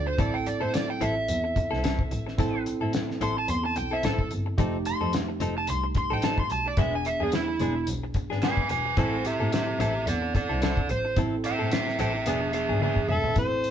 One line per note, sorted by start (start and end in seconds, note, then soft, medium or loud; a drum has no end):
0.00 0.18 D2 medium
0.00 0.19 D4 medium
0.00 0.19 F4 soft
0.00 0.17 A4 medium
0.06 0.19 C5 medium
0.06 muted clean electric guitar stroke soft
0.18 0.41 A1 medium
0.18 0.36 E3 medium
0.18 2.34 C4 medium
0.18 0.37 C4 medium
0.18 2.34 E4 medium
0.18 0.37 E4 medium
0.18 2.35 A4 medium
0.18 0.37 A4 medium
0.18 0.34 D5 loud
0.18 kick loud
0.18 closed hi-hat medium
0.34 0.46 G5 medium
0.46 0.61 A1 soft
0.46 0.61 D5 medium
0.46 muted clean electric guitar stroke soft
0.46 closed hi-hat medium
0.60 1.01 A2 medium
0.60 0.72 C4 soft
0.60 0.73 E4 soft
0.60 0.73 A4 medium
0.60 0.74 C5 medium
0.73 0.89 D5 loud
0.73 muted clean electric guitar stroke soft
0.73 snare loud
0.73 closed hi-hat medium
0.88 1.02 G5 medium
0.88 muted clean electric guitar stroke soft
1.01 1.24 A1 loud
1.01 1.16 E3 medium
1.01 1.16 C4 medium
1.01 1.16 E4 medium
1.01 1.15 A4 medium
1.01 2.63 E5 loud
1.01 closed hi-hat medium
1.16 muted clean electric guitar stroke soft
1.28 1.64 E2 medium
1.28 closed hi-hat medium
1.44 muted clean electric guitar stroke soft
1.56 muted clean electric guitar stroke soft
1.56 kick medium
1.56 closed hi-hat medium
1.71 2.04 C2 medium
1.71 1.82 C4 soft
1.71 1.83 E4 medium
1.71 1.83 A4 medium
1.71 snare soft
1.83 2.01 E3 medium
1.83 2.01 C4 medium
1.83 2.02 E4 medium
1.83 2.02 A4 medium
1.83 snare loud
1.83 closed hi-hat medium
1.99 kick medium
2.11 2.24 A1 medium
2.11 muted clean electric guitar stroke soft
2.11 closed hi-hat medium
2.27 muted clean electric guitar stroke soft
2.27 snare soft
2.38 2.61 A1 medium
2.38 2.56 E3 medium
2.38 4.54 C4 medium
2.38 2.57 C4 medium
2.38 4.54 E4 medium
2.38 2.57 E4 medium
2.38 4.54 A4 medium
2.38 2.57 A4 medium
2.38 kick loud
2.38 closed hi-hat medium
2.66 2.80 A1 soft
2.66 muted clean electric guitar stroke soft
2.66 closed hi-hat medium
2.81 3.20 A2 medium
2.81 2.93 C4 medium
2.81 2.93 E4 medium
2.81 2.94 A4 medium
2.93 muted clean electric guitar stroke soft
2.93 snare loud
2.93 closed hi-hat medium
3.09 muted clean electric guitar stroke soft
3.09 snare soft
3.21 3.43 A1 medium
3.21 3.36 E3 medium
3.21 3.37 C4 medium
3.21 3.36 E4 medium
3.21 3.35 A4 medium
3.21 3.37 C6 loud
3.21 closed hi-hat medium
3.36 3.49 A5 medium
3.36 muted clean electric guitar stroke soft
3.48 3.71 E2 medium
3.48 3.64 C6 medium
3.48 closed hi-hat medium
3.63 3.77 A5 medium
3.63 muted clean electric guitar stroke soft
3.76 4.01 B1 medium
3.76 3.92 G5 medium
3.76 muted clean electric guitar stroke soft
3.76 closed hi-hat medium
3.91 4.03 C4 soft
3.91 4.03 E4 medium
3.91 4.04 A4 soft
3.91 4.04 E5 medium
4.03 4.29 A1 medium
4.03 4.21 E3 medium
4.03 4.21 C4 medium
4.03 4.22 E4 medium
4.03 4.22 A4 medium
4.03 4.31 A4 medium
4.03 snare loud
4.03 closed hi-hat medium
4.19 kick medium
4.31 4.56 G1 medium
4.31 muted clean electric guitar stroke soft
4.31 closed hi-hat medium
4.46 muted clean electric guitar stroke soft
4.57 4.81 F1 loud
4.57 4.76 F3 medium
4.57 6.74 A3 medium
4.57 4.76 C4 medium
4.57 6.74 D#4 medium
4.57 4.77 D#4 loud
4.57 6.74 G4 medium
4.57 4.77 A4 loud
4.57 kick loud
4.57 closed hi-hat medium
4.85 5.00 F1 soft
4.85 5.13 C6 medium
4.85 muted clean electric guitar stroke soft
4.85 closed hi-hat medium
5.00 5.40 F2 medium
5.00 5.13 C4 soft
5.00 5.13 D#4 soft
5.00 5.13 A4 medium
5.13 muted clean electric guitar stroke soft
5.13 snare loud
5.13 closed hi-hat medium
5.29 muted clean electric guitar stroke soft
5.40 5.63 F1 medium
5.40 5.56 F3 medium
5.40 5.56 C4 medium
5.40 5.56 D#4 medium
5.40 5.55 A4 medium
5.40 closed hi-hat medium
5.56 5.69 A5 medium
5.56 muted clean electric guitar stroke soft
5.67 6.03 C2 medium
5.67 5.84 C6 loud
5.67 closed hi-hat medium
5.84 muted clean electric guitar stroke soft
5.95 6.12 C6 medium
5.95 muted clean electric guitar stroke soft
5.95 kick medium
5.95 closed hi-hat medium
6.10 6.43 A1 medium
6.10 6.22 C4 soft
6.10 6.23 D#4 soft
6.10 6.23 A4 medium
6.10 6.24 G5 medium
6.22 6.41 F3 medium
6.22 6.41 C4 medium
6.22 6.41 D#4 medium
6.22 6.41 A4 medium
6.22 6.38 A5 medium
6.22 snare loud
6.22 closed hi-hat medium
6.38 6.51 C6 medium
6.38 kick medium
6.50 6.77 B1 medium
6.50 6.66 A5 medium
6.50 muted clean electric guitar stroke soft
6.50 closed hi-hat medium
6.66 6.79 D5 medium
6.66 muted clean electric guitar stroke soft
6.77 7.00 E1 loud
6.77 6.96 G#3 medium
6.77 8.93 B3 medium
6.77 6.96 B3 medium
6.77 8.94 D4 medium
6.77 6.96 D4 medium
6.77 8.94 G#4 medium
6.77 6.96 G#4 medium
6.77 6.93 E5 medium
6.77 kick loud
6.77 closed hi-hat medium
6.95 7.06 G#5 medium
7.05 7.20 E1 soft
7.05 7.21 E5 medium
7.05 muted clean electric guitar stroke soft
7.05 closed hi-hat medium
7.20 7.60 E2 medium
7.20 7.32 B3 soft
7.20 7.32 D4 soft
7.20 7.33 G#4 medium
7.20 7.34 G#4 medium
7.32 7.87 E4 loud
7.32 muted clean electric guitar stroke soft
7.32 snare loud
7.32 closed hi-hat medium
7.48 muted clean electric guitar stroke soft
7.60 7.83 E1 loud
7.60 7.76 G#3 medium
7.60 7.76 B3 medium
7.60 7.76 D4 medium
7.60 7.75 G#4 medium
7.60 closed hi-hat medium
7.87 8.22 B1 medium
7.87 closed hi-hat medium
8.04 muted clean electric guitar stroke medium
8.14 muted clean electric guitar stroke soft
8.14 kick medium
8.14 closed hi-hat medium
8.30 8.62 G#1 medium
8.30 8.42 B3 soft
8.30 8.42 D4 medium
8.30 8.43 G#4 medium
8.30 snare soft
8.42 8.60 G#3 medium
8.42 8.61 B3 medium
8.42 8.61 D4 medium
8.42 8.61 G#4 medium
8.42 8.69 B4 medium
8.42 8.70 G#5 medium
8.42 snare loud
8.42 closed hi-hat medium
8.57 kick medium
8.69 8.96 E1 medium
8.69 8.96 B4 medium
8.69 8.97 G#5 loud
8.69 muted clean electric guitar stroke soft
8.69 closed hi-hat medium
8.86 muted clean electric guitar stroke soft
8.97 9.20 A1 loud
8.97 9.15 E3 medium
8.97 11.13 C4 medium
8.97 9.16 C4 medium
8.97 11.13 E4 medium
8.97 9.16 E4 medium
8.97 11.13 A4 medium
8.97 9.16 A4 medium
8.97 9.24 C5 medium
8.97 9.25 G#5 medium
8.97 kick loud
8.97 closed hi-hat medium
9.25 9.39 A1 soft
9.25 9.51 G4 medium
9.25 9.53 E5 medium
9.25 muted clean electric guitar stroke soft
9.25 closed hi-hat medium
9.40 9.79 A2 medium
9.40 9.52 C4 soft
9.40 9.52 E4 medium
9.40 9.53 A4 medium
9.52 9.78 G4 medium
9.52 9.80 E5 loud
9.52 muted clean electric guitar stroke soft
9.52 snare loud
9.52 closed hi-hat medium
9.67 muted clean electric guitar stroke soft
9.79 10.02 A1 loud
9.79 9.95 E3 medium
9.79 9.95 C4 medium
9.79 9.94 E4 medium
9.79 10.06 G4 medium
9.79 9.94 A4 medium
9.79 10.07 E5 medium
9.79 closed hi-hat medium
9.95 muted clean electric guitar stroke soft
10.07 10.41 E2 medium
10.07 10.33 A4 medium
10.07 10.34 D5 medium
10.07 closed hi-hat medium
10.22 muted clean electric guitar stroke soft
10.35 10.61 A4 medium
10.35 10.62 D5 medium
10.35 muted clean electric guitar stroke soft
10.35 kick medium
10.35 closed hi-hat medium
10.49 10.82 C2 medium
10.49 10.61 C4 soft
10.49 10.61 E4 medium
10.49 10.62 A4 medium
10.62 10.80 E3 medium
10.62 10.80 C4 medium
10.62 10.80 E4 medium
10.62 10.88 A4 medium
10.62 10.80 A4 medium
10.62 10.90 D5 medium
10.62 snare loud
10.62 closed hi-hat medium
10.77 kick medium
10.89 11.02 A1 medium
10.89 11.17 C5 loud
10.89 muted clean electric guitar stroke soft
10.89 closed hi-hat medium
11.05 muted clean electric guitar stroke soft
11.16 11.39 A1 medium
11.16 11.35 E3 medium
11.16 12.24 C4 medium
11.16 11.35 C4 medium
11.16 12.25 E4 medium
11.16 11.35 E4 medium
11.16 12.25 A4 medium
11.16 11.36 A4 medium
11.16 kick loud
11.16 closed hi-hat medium
11.44 11.59 A1 soft
11.44 11.72 E5 medium
11.44 11.72 G5 medium
11.44 muted clean electric guitar stroke soft
11.44 closed hi-hat medium
11.59 11.98 A2 medium
11.59 11.71 C4 soft
11.59 11.71 E4 soft
11.59 11.71 A4 medium
11.72 11.98 E5 medium
11.72 11.99 G5 medium
11.72 muted clean electric guitar stroke soft
11.72 snare loud
11.72 closed hi-hat medium
11.87 muted clean electric guitar stroke soft
11.87 snare soft
11.99 12.21 A1 loud
11.99 12.14 E3 medium
11.99 12.14 C4 medium
11.99 12.13 E4 medium
11.99 12.13 A4 medium
11.99 12.25 E5 medium
11.99 12.27 G5 medium
11.99 closed hi-hat medium
12.14 muted clean electric guitar stroke soft
12.26 12.61 E1 medium
12.26 12.42 B3 medium
12.26 13.34 B3 medium
12.26 13.34 D4 medium
12.26 12.42 D4 medium
12.26 13.35 G#4 medium
12.26 12.53 G#4 medium
12.26 12.41 G#4 medium
12.26 12.53 E5 medium
12.26 closed hi-hat medium
12.42 muted clean electric guitar stroke soft
12.53 12.80 G#4 medium
12.53 12.81 E5 medium
12.53 muted clean electric guitar stroke soft
12.53 closed hi-hat medium
12.69 13.02 G#1 medium
12.69 12.82 D4 soft
12.69 12.82 G#4 medium
12.81 12.99 B3 medium
12.81 13.00 D4 medium
12.81 13.08 G#4 medium
12.81 13.00 G#4 medium
12.81 13.08 E5 medium
12.81 high tom medium
12.96 kick medium
13.09 13.21 E1 medium
13.09 13.36 A4 medium
13.09 13.36 E5 loud
13.09 muted clean electric guitar stroke soft
13.09 mid tom medium
13.24 muted clean electric guitar stroke soft
13.24 floor tom medium
13.36 13.59 A1 medium
13.36 13.71 C4 medium
13.36 13.71 E4 medium
13.36 13.71 A4 medium
13.36 13.71 C5 loud
13.36 kick loud
13.36 closed hi-hat medium
13.64 13.71 A1 soft
13.64 closed hi-hat medium